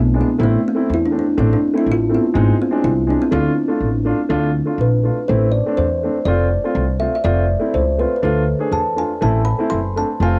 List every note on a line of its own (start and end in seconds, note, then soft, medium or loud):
0.00 0.20 B1 medium
0.00 0.18 B3 loud
0.14 0.27 G#3 medium
0.14 0.28 B3 medium
0.14 0.28 D4 medium
0.21 0.41 B3 medium
0.39 0.54 A1 loud
0.39 0.58 A3 medium
0.39 0.58 C4 medium
0.39 0.59 E4 medium
0.43 0.64 A3 medium
0.68 0.89 C4 medium
0.75 0.94 A3 medium
0.75 0.94 C4 medium
0.75 0.95 E4 medium
0.90 1.19 E2 medium
0.94 1.04 E4 loud
1.06 1.15 D4 medium
1.11 1.24 A3 medium
1.11 1.25 C4 medium
1.11 1.25 D4 medium
1.19 1.41 D4 medium
1.37 1.52 A1 loud
1.37 1.56 A3 medium
1.37 1.56 C4 medium
1.37 1.51 C4 medium
1.37 1.57 D4 medium
1.53 1.77 D4 medium
1.74 1.92 A3 medium
1.74 1.93 C4 medium
1.74 1.93 E4 medium
1.78 1.87 E4 medium
1.86 2.16 A1 medium
1.92 2.14 F4 loud
2.09 2.22 A3 medium
2.09 2.23 C4 medium
2.09 2.23 E4 medium
2.14 2.38 B3 medium
2.34 2.50 G#1 loud
2.34 2.53 G#3 medium
2.34 2.59 A3 medium
2.34 2.53 C4 medium
2.34 2.54 D#4 medium
2.61 2.86 C4 loud
2.71 2.90 G#3 medium
2.71 2.90 C4 medium
2.71 2.91 D4 medium
2.84 3.13 C2 medium
2.84 3.09 E4 loud
3.07 3.20 G#3 medium
3.07 3.21 C4 medium
3.07 3.21 D4 medium
3.22 3.34 C4 loud
3.31 3.47 D2 loud
3.31 3.50 A3 medium
3.31 3.51 D4 medium
3.31 4.03 D4 medium
3.31 3.51 F4 loud
3.68 3.87 A3 medium
3.68 3.87 D4 medium
3.68 3.88 F4 medium
3.81 4.10 A1 medium
4.05 4.18 A3 medium
4.05 4.18 D4 medium
4.05 4.19 F4 medium
4.29 4.60 D2 loud
4.29 4.48 A3 medium
4.29 4.49 D4 medium
4.29 4.49 F4 medium
4.66 4.85 A3 medium
4.66 4.85 D4 medium
4.66 4.86 F4 medium
4.78 5.08 A#1 medium
4.78 5.31 B4 medium
5.03 5.16 A3 medium
5.03 5.16 D4 medium
5.03 5.17 F4 medium
5.28 5.59 A1 loud
5.28 5.47 A3 medium
5.28 5.48 C4 medium
5.28 5.48 E4 medium
5.28 5.54 C5 medium
5.52 5.75 D5 medium
5.66 5.84 A3 medium
5.66 5.84 C4 medium
5.66 5.85 D4 medium
5.77 6.07 E2 medium
5.77 6.23 C5 medium
6.03 6.15 A3 medium
6.03 6.16 C4 medium
6.03 6.16 D4 medium
6.25 6.55 F1 medium
6.25 6.45 A3 medium
6.25 6.46 C4 medium
6.25 6.46 F4 medium
6.25 6.96 D5 medium
6.64 6.82 A3 medium
6.64 6.83 C4 medium
6.64 6.83 F4 medium
6.75 7.05 C2 medium
6.99 7.12 A3 medium
6.99 7.13 C4 medium
6.99 7.13 F4 medium
6.99 7.14 E5 medium
7.15 7.24 E5 medium
7.24 7.54 F1 loud
7.24 7.43 A3 medium
7.24 7.44 C4 medium
7.24 7.44 F4 medium
7.24 7.75 D5 medium
7.59 7.79 A3 medium
7.59 7.80 C4 medium
7.59 7.80 E4 medium
7.74 8.04 C#2 medium
7.74 8.00 C5 medium
7.98 8.11 A3 medium
7.98 8.11 C4 medium
7.98 8.12 F4 medium
7.98 8.15 B4 medium
8.16 8.23 B4 medium
8.22 8.52 D2 medium
8.22 8.41 A3 medium
8.22 8.41 D4 medium
8.22 8.42 F4 medium
8.22 8.47 A4 medium
8.59 8.78 A3 medium
8.59 8.79 D4 medium
8.59 8.79 G#4 medium
8.71 9.01 E2 medium
8.71 8.98 A5 medium
8.96 9.09 A3 medium
8.96 9.09 D4 medium
8.96 9.10 F4 medium
8.96 9.09 G#5 medium
9.21 9.51 A1 loud
9.21 9.40 A3 medium
9.21 9.40 C4 medium
9.21 9.41 E4 medium
9.21 9.47 A5 medium
9.45 9.71 B5 loud
9.59 9.77 A3 medium
9.59 9.77 C4 medium
9.59 9.78 E4 medium
9.70 10.01 F#1 medium
9.70 9.96 C6 loud
9.96 10.08 A3 medium
9.96 10.09 C4 medium
9.96 10.09 D4 medium
9.96 10.20 A5 medium
10.20 10.39 F1 medium
10.20 10.39 A3 medium
10.20 10.39 C4 medium
10.20 10.39 F4 loud
10.20 10.39 G#5 medium